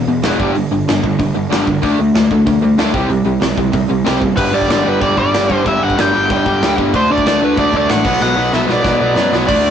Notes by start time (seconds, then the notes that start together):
0.08 E1 E2 B2
0.23 E1 E2 B2 E3, snare, open hi-hat
0.40 G1 G2 D3 G3, kick
0.55 G1 G2 D3, open hi-hat
0.71 G1 G2 D3
0.88 G1 G2 D3, snare, open hi-hat
1.03 G1 G2 D3, kick
1.19 G1 G2 D3, kick, open hi-hat
1.35 G1 G2 D3
1.51 G1 G2 D3 G3, snare, open hi-hat
1.67 G1 G2 D3, kick
1.82 D2 D3 A3 D4, kick, open hi-hat
1.99 D2 D3 A3
2.14 D2 D3 A3, snare, open hi-hat
2.31 D2 D3 A3, kick
2.46 D2 D3 A3, kick, open hi-hat
2.61 D2 D3 A3
2.77 D2 D3 A3 D4, snare, open hi-hat
2.94 C2 C3 G3 C4, kick
3.09 C2 C3 G3, open hi-hat
3.25 C2 C3 G3
3.41 C2 C3 G3, snare, open hi-hat
3.57 C2 C3 G3, kick
3.73 C2 C3 G3, kick, open hi-hat
3.90 C2 C3 G3
4.05 C2 C3 G3 C4, snare, open hi-hat
4.20 F#1 C3 G3, kick
4.36 G1 G2 D3 G3 B4, kick, crash
4.53 G1 G2 D3 G3 D5
4.61 kick
4.68 G2 D3 G3 D5, snare, crash
4.72 G1
4.83 G1 G2 D3 G3
4.89 B4
5.01 G1 G2 D3 G3 D5, kick, crash
5.17 G1 G2 D3 G3 D5, kick
5.33 G1 G2 D3 G3, snare, crash
5.50 G1 G2 D3 G3, kick
5.66 G1 G2 D3 G3 E5, kick, crash
5.82 G1 G2 D3 G3 F#5
5.90 kick
5.97 G1 G2 D3 G3 G5, snare, crash
6.13 G1 G2 D3 G3
6.30 G1 G2 D3 G3 G5, kick, crash
6.46 G1 G2 D3 G3, kick
6.62 D2 G2 D3 G3, snare, crash
6.78 G1 G2 D3 G3, kick
6.94 D2 D3 A3 D4 C5, kick, crash
7.11 D2 D3 A3 D4 D5
7.18 kick
7.26 D2 D3 A3 D4 D5, snare, crash
7.42 D2 D3 A3 D4 B4
7.57 D2 D3 A3 D4 D5, kick, crash
7.73 D2 D3 A3 D4, kick
7.77 D5
7.89 A1 D3 A3 D4 F#5, snare, crash
8.05 B1 B2 F#3 B3, kick, crash
8.20 B1 B2 F#3 B3 F#5, snare
8.36 B1 B2 F#3 B3
8.53 B1 B2 F#3 B3 E5, snare
8.68 B1 B2 F#3 B3 D5, snare
8.84 B1 B2 F#3 B3, kick, snare
9.00 B1 B2 F#3 B3
9.15 F#2 B2 F#3 B3, snare
9.32 B1 B2 F#3 B3, snare
9.47 D2 D3 A3 D5, kick, crash
9.51 D4
9.63 D2